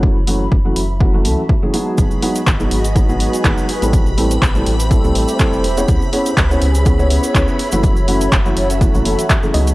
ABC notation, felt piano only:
X:1
M:4/4
L:1/16
Q:"Swing 16ths" 1/4=123
K:F#dor
V:1 name="Felt piano"
[E,F,A,CF] z [E,F,A,CF] z2 [E,F,A,CF] z2 [E,F,A,CF] [E,F,A,CF] [E,F,A,CA] z2 [E,F,A,CG] [F,G,B,DG]2- | [F,G,B,DG]2 [F,G,B,DG] z2 [F,G,B,DG] z2 [F,G,B,DG] [F,G,B,DG]3 [F,G,B,DG]2 z [=G,A,^B,EA]- | [=G,A,^B,EA] z [G,A,=CEA] z2 [G,A,CEA] z2 [G,A,CEA] [G,A,CEA]3 [G,A,CEA]2 z [=B,^CE^Gc]- | [B,CEGc] z [B,CEGc] z2 [B,CEGc] z2 [B,CEGc] [B,CEGc]3 [B,CEGc]2 z [E,F,A,CF]- |
[E,F,A,CF] z [E,F,A,CF] z2 [E,F,A,CF] z2 [E,F,A,CF] [E,F,A,CF] [E,F,A,CA] z2 [E,F,A,CG] [F,G,B,DG]2 |]